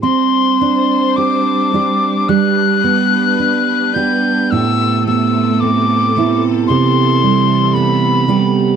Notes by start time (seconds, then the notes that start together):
Already playing: G3 G4
0.02 G3 C4 D4 C5 C6
0.61 D4
1.16 G4 D6
1.74 D4 G4 C5
2.28 G3 B4 F#6
2.84 B3
3.40 D4
3.94 B3 D4 G4 G6
4.50 A2 C3 A3 A4 E6
5.06 B3 E6
5.60 C4 D6
6.17 B3 C4 E4
6.67 C3 E3 C6
7.23 G3
7.73 B3 B5
8.28 G3 B3 G4